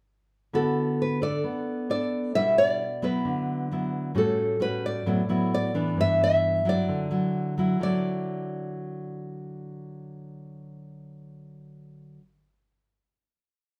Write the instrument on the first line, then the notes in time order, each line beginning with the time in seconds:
nylon-string guitar
0.53 D3 B3 E4 F#4 A4
1.02 B4
1.22 D4 A4 D5
1.44 B3
1.90 D4 A4 D5
2.35 B2 G3 D4 E4 E5
2.58 D5
3.02 F#3 B3 E4 B4
3.25 D3
3.71 F#3 B3 E4
4.15 A2 G3 C#4 F#4 A4
4.60 G3 C#4 F#4 B4
4.86 D5
5.06 A2 F#3 B3 E4
5.29 F#3 B3 E4
5.54 D5
5.74 E3 B3 D4
5.97 G2 E5
6.24 E5
6.65 F#3 E4
6.69 D5
6.89 D3
7.11 F#3 E4
7.58 F#3 E4
7.79 D3 F#3 D5
7.85 E4